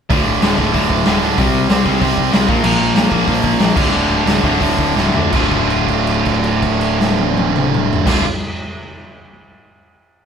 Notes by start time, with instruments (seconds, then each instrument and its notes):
0.10 picked electric bass D1, distorted electric guitar D2 A2 D3, kick, open hi-hat
0.26 picked electric bass D1
0.42 picked electric bass D1, distorted electric guitar D2 A2 D3, snare, open hi-hat
0.58 picked electric bass D1, distorted electric guitar D2 A2 D3, kick
0.73 picked electric bass D1, distorted electric guitar D2 A2 D3, kick, open hi-hat
0.90 picked electric bass D1, kick
1.05 picked electric bass D1, distorted electric guitar D2 A2 D3, snare, open hi-hat
1.22 picked electric bass D2, distorted electric guitar D2 A2 D3
1.38 picked electric bass C2, distorted electric guitar C3 G3 C4, kick, open hi-hat
1.54 picked electric bass C2
1.70 picked electric bass C2, distorted electric guitar C3 G3 C4, snare, open hi-hat
1.86 picked electric bass C2, distorted electric guitar C3 G3 C4, kick
2.01 picked electric bass C2, distorted electric guitar C3 G3 C4, kick, open hi-hat
2.17 picked electric bass C2, kick
2.32 picked electric bass C2, distorted electric guitar C3 G3 C4, snare, open hi-hat
2.48 picked electric bass A#1, distorted electric guitar A#2 F3 A#3, kick
2.64 picked electric bass A#1, distorted electric guitar A#2 F3 A#3, crash
2.80 picked electric bass A#1
2.95 picked electric bass A#1, distorted electric guitar A#2 F3 A#3, snare, open hi-hat
3.11 picked electric bass A#1, distorted electric guitar A#2 F3 A#3, kick
3.28 picked electric bass A#1, distorted electric guitar A#2 F3 A#3, kick, open hi-hat
3.44 picked electric bass A#1, kick
3.59 picked electric bass A#1, distorted electric guitar A#2 F3 A#3, snare, open hi-hat
3.76 picked electric bass D1, distorted electric guitar D2 A2 D3, kick, crash
3.92 picked electric bass D1, distorted electric guitar D2 A2 D3
4.08 picked electric bass D1
4.26 picked electric bass D1, distorted electric guitar D2 A2 D3, snare, open hi-hat
4.43 picked electric bass D1, distorted electric guitar D2 A2 D3, kick
4.61 picked electric bass D1, distorted electric guitar D2 A2 D3, kick, open hi-hat
4.79 picked electric bass D1, kick
4.96 picked electric bass D1, distorted electric guitar D2 A2 D3, snare
5.14 distorted electric guitar D2 A2 D3, picked electric bass D2, floor tom
5.32 picked electric bass D1, distorted electric guitar D2 A2 D3 A3 F4, kick, crash
5.51 kick, crash
5.70 crash
5.88 kick, crash
6.07 crash
6.25 kick, crash
6.44 crash
6.62 kick, crash
6.81 crash
7.00 snare
7.19 high tom
7.38 high tom
7.56 mid tom
7.74 mid tom
7.93 floor tom
8.06 picked electric bass D1, distorted electric guitar D2 A2 D3 A3 F4, kick, snare, crash